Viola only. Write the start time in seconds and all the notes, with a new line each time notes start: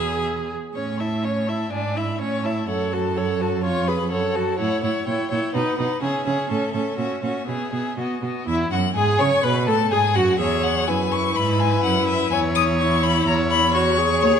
Already playing: G#4
0.75 C#4
0.99 E4
1.24 C#4
1.48 E4
1.72 D4
1.96 E4
2.20 C#4
2.45 E4
2.68 A4
2.92 F#4
3.17 A4
3.40 F#4
3.64 F4
3.88 G#4
4.11 A4
4.35 F#4
4.59 E4
4.83 E4
5.07 E4
5.31 E4
5.55 D#4
5.79 D#4
6.02 C#4
6.25 C#4
6.49 C#4
6.74 C#4
6.98 C#4
7.22 C#4
7.46 B3
7.73 B3
7.97 B3
8.21 B3
8.47 E4
8.72 F#4
8.95 G#4
9.19 C#5
9.43 B4
9.67 A4
9.91 G#4
10.15 F#4
10.39 G#4
10.87 E4
12.79 E4
13.74 F#4
13.98 G#4